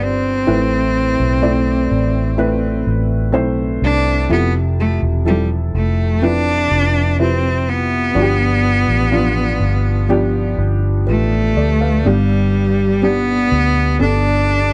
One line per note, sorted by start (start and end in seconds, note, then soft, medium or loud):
0.00 0.44 G1 medium
0.00 0.50 G3 medium
0.00 2.88 C4 medium
0.00 0.49 D4 medium
0.00 0.49 F4 medium
0.00 0.48 B4 medium
0.00 0.43 D5 medium
0.47 1.16 A1 medium
0.47 1.87 A2 medium
0.47 1.38 A3 medium
0.47 1.38 C4 medium
0.47 1.39 E4 medium
0.47 1.39 B4 medium
1.20 1.88 B1 medium
1.42 2.34 A3 medium
1.42 2.34 C4 medium
1.42 2.34 E4 medium
1.42 2.34 D5 medium
1.91 2.83 A1 medium
2.38 3.29 A3 medium
2.38 3.29 C4 medium
2.38 3.29 E4 medium
2.38 3.30 B4 medium
2.87 3.34 A1 medium
3.32 3.79 B1 medium
3.32 4.24 A3 medium
3.32 4.25 C4 medium
3.32 4.25 E4 medium
3.32 4.25 C5 medium
3.82 4.27 C2 medium
3.82 4.28 D4 loud
4.29 4.98 F1 medium
4.29 5.21 C3 medium
4.29 5.21 F3 medium
4.29 4.52 B3 medium
4.29 5.21 E4 medium
4.29 5.22 A4 medium
4.80 5.00 A3 medium
5.03 5.71 E1 medium
5.25 6.18 F3 medium
5.25 5.48 G3 medium
5.25 6.18 C4 medium
5.25 6.18 E4 medium
5.25 6.18 A4 medium
5.74 6.67 F1 medium
5.74 6.25 A3 medium
6.22 7.14 F3 medium
6.22 7.14 C4 medium
6.22 7.20 D4 loud
6.22 7.15 E4 medium
6.22 7.15 B4 medium
6.71 8.12 F1 medium
7.19 8.11 C3 medium
7.19 8.11 F3 medium
7.19 7.70 C4 medium
7.19 8.11 E4 medium
7.19 8.11 B4 medium
7.69 10.59 B3 medium
8.14 8.85 G1 medium
8.14 9.57 G2 medium
8.14 9.07 F3 medium
8.14 9.07 B3 medium
8.14 9.07 D4 medium
8.14 8.22 F#4 medium
8.22 9.11 G4 medium
8.88 9.57 A1 medium
9.11 10.04 F3 medium
9.11 10.04 B3 medium
9.11 10.05 D4 medium
9.11 10.05 F4 medium
9.60 10.54 G1 medium
10.09 11.03 F3 medium
10.09 11.03 B3 medium
10.09 11.03 D4 medium
10.09 11.03 G4 medium
10.58 11.04 G1 medium
11.07 11.53 A1 medium
11.07 12.08 A3 medium
11.07 11.55 F4 medium
11.07 11.54 B4 medium
11.56 12.02 D2 medium
11.56 11.80 A4 soft
11.56 11.80 D5 medium
11.81 12.28 B4 medium
11.81 12.27 F5 medium
12.05 13.48 G1 medium
12.05 13.48 G2 medium
12.05 13.06 G3 medium
12.05 12.98 B3 medium
12.05 12.99 D4 medium
12.05 12.99 G4 medium
13.02 13.95 B3 medium
13.02 14.00 B3 loud
13.02 13.96 D4 medium
13.02 13.96 G4 medium
13.52 13.97 D2 medium
13.99 14.73 G1 loud
13.99 14.73 B3 medium
13.99 14.73 D4 medium
13.99 14.73 A4 medium